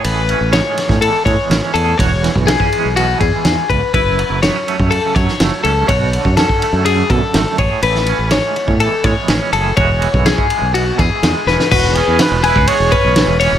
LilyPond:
<<
  \new Staff \with { instrumentName = "Clean electric guitar" } { \time 4/4 \key e \mixolydian \tempo 4 = 123 b'4 cis''4 a'8 cis''4 a'8 | cis''4 gis'4 fis'8 gis'4 b'8 | b'4 cis''4 a'8 cis''4 a'8 | cis''4 a'4 gis'8 a'4 cis''8 |
b'4 cis''4 a'8 cis''4 a'8 | cis''4 gis'4 fis'8 gis'4 b'8 | \key e \major b'4 r8 gis'4 b'4 cis''8 | }
  \new Staff \with { instrumentName = "Trumpet" } { \time 4/4 \key e \mixolydian r1 | r1 | r1 | r1 |
r1 | r1 | \key e \major fis'8 gis'8 b'8 b'8 cis''4. r8 | }
  \new Staff \with { instrumentName = "Clean electric guitar" } { \clef bass \time 4/4 \key e \mixolydian << { gis'8 cis'8 gis4. gis8 cis'8 gis'8 | fis'4 b16 cis'16 gis2~ gis8 | e'4 b16 cis'16 a4. a8 cis'8 | fis'4 cis'8 a4. a8 gis'8~ |
gis'8 cis'8 gis4. gis8 cis'8 gis'8 | <e gis cis' fis'>4 cis'8 gis4. gis8 cis'8 | \key e \major r8 cis'8 gis8 e'16 fis'16 gis8 cis'4 cis'8 | } \\ { a,4. e,8 e4. a,8 | e,8 e4. b,8 e4 e,8 | fis,8 fis4. cis8 fis4. | b,8 d4. fis,8 d4 a,8 |
e4. e,8 e4. a,8 | e,8 e4. b,8 e4. | e,2. e4 | } >> }
  \new Staff \with { instrumentName = "Fingered electric bass" } { \clef bass \time 4/4 \key e \mixolydian a,,8. a,,8 r8 a,8 r16 a,16 r16 a,,16 r16 e,8 | e,,8. b,,8 r8 b,,8. e,16 r16 e,16 r16 cis,16 r16 | fis,,8. fis,,8 r8 fis,8 r16 fis,16 r16 fis,,16 r16 cis,8 | b,,8. fis,8 r8 fis,8. b,16 r16 gis,,16 r16 a,,16 r16 |
a,,8. a,,8 r8 a,8 r16 a,16 r16 a,,16 r16 fis,,8 | e,,8. b,,8 r8 b,,8. e,16 r16 e,16 r16 e,,16 r16 | \key e \major e,,8. e,16 r16 e,,8 cis,16 r16 e,,16 r16 b,,8 e,,8 e,,16 | }
  \new DrumStaff \with { instrumentName = "Drums" } \drummode { \time 4/4 cymr8 cymr8 <cymr sn>8 <cymr sn>16 <bd sn>16 cymr8 <bd cymr>8 <cymr sn>8 cymr8 | <bd cymr>8 <cymr sn>16 bd16 <cymr sn>16 bd16 cymr8 cymr8 <bd cymr>8 <cymr sn>8 <bd cymr>8 | <bd cymr>8 cymr8 <cymr sn>8 cymr16 bd16 cymr8 <bd cymr>16 sn16 <cymr sn>8 cymr8 | <bd cymr>8 cymr16 bd16 <cymr sn>16 bd16 cymr8 cymr8 <bd cymr>8 <cymr sn>8 <bd cymr>8 |
cymr16 sn16 cymr8 <cymr sn>8 cymr16 bd16 cymr8 <bd cymr>8 <cymr sn>8 cymr8 | <bd cymr>8 cymr16 bd16 <cymr sn>16 bd16 cymr8 cymr8 <bd cymr>8 <cymr sn>8 sn16 sn16 | <cymc bd>16 sn16 cymr8 <cymr sn>8 cymr16 bd16 cymr8 <bd cymr>8 <cymr sn>8 cymr8 | }
>>